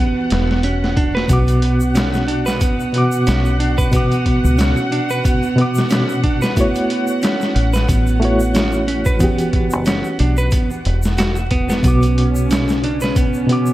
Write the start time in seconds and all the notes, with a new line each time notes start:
Already playing: E3 B3 F#4 G4 F#5
0.00 B3
0.30 E1, snare, closed hi-hat
0.51 snare
0.63 C#4, closed hi-hat
0.84 snare
0.97 D4, kick, closed hi-hat
1.15 B4, snare
1.28 B1 B2 B3 F#4 F#5, kick, closed hi-hat, shaker
1.33 D6
1.48 closed hi-hat, shaker
1.62 closed hi-hat
1.80 shaker
1.95 C#4, snare, closed hi-hat, shaker
2.14 snare, shaker
2.28 D4, closed hi-hat
2.46 B4, snare, shaker
2.61 B3, kick, closed hi-hat, shaker
2.80 shaker
2.93 B2 B3 F#4, closed hi-hat
2.98 D6
3.12 shaker
3.27 B1 C#4, snare, closed hi-hat, shaker
3.45 shaker
3.60 D4, closed hi-hat
3.78 B4, kick, shaker
3.91 B2 B3 F#4, kick, closed hi-hat, shaker
3.96 D6
4.12 closed hi-hat, shaker
4.26 kick, closed hi-hat
4.44 C#2, shaker
4.58 C#4, snare, closed hi-hat, shaker
4.77 shaker
4.92 D4, closed hi-hat
5.10 B4, shaker
5.24 B3, kick, closed hi-hat, shaker
5.43 shaker
5.56 B2 B3 F#4, closed hi-hat
5.62 D6
5.75 snare, shaker
5.90 C#4, snare, closed hi-hat, shaker
6.09 shaker
6.24 D4, kick, closed hi-hat
6.42 B4, snare, shaker
6.56 A3 B3 E4 F#4, kick, closed hi-hat, shaker
6.61 C#5
6.75 closed hi-hat, shaker
6.90 closed hi-hat
7.07 shaker
7.22 C#4, snare, closed hi-hat, shaker
7.41 snare, shaker
7.55 A1 C#4, closed hi-hat
7.74 B4, snare, shaker
7.89 A1 B3, kick, closed hi-hat, shaker
8.07 shaker
8.20 A3 E4 F#4, closed hi-hat
8.25 C#5
8.40 shaker
8.54 C#4, snare, closed hi-hat, shaker
8.72 shaker
8.88 C#4, closed hi-hat
9.05 B4, kick, shaker
9.19 E1 E3 B3 F#4, kick, closed hi-hat, shaker
9.24 G4
9.38 closed hi-hat, shaker
9.53 kick, closed hi-hat
9.71 F#1, shaker
9.85 C#4, snare, closed hi-hat, shaker
10.05 shaker
10.19 B1 D4, closed hi-hat
10.37 B4, shaker
10.51 B3, kick, closed hi-hat, shaker
10.71 shaker
10.85 E1, closed hi-hat
11.03 snare, shaker
11.18 F#4, snare, closed hi-hat, shaker
11.36 shaker
11.51 B3, kick, closed hi-hat
11.69 B3, snare, shaker
11.83 B1 B2 B3 C#4 F#4, kick, closed hi-hat, shaker
11.88 D6
12.02 closed hi-hat, shaker
12.18 closed hi-hat
12.35 shaker
12.50 C#4, snare, closed hi-hat, shaker
12.68 snare, shaker
12.84 D4, closed hi-hat
13.01 B4, snare, shaker
13.16 B3, kick, closed hi-hat, shaker
13.34 shaker
13.47 B2 B3 F#4, closed hi-hat
13.53 D6
13.66 shaker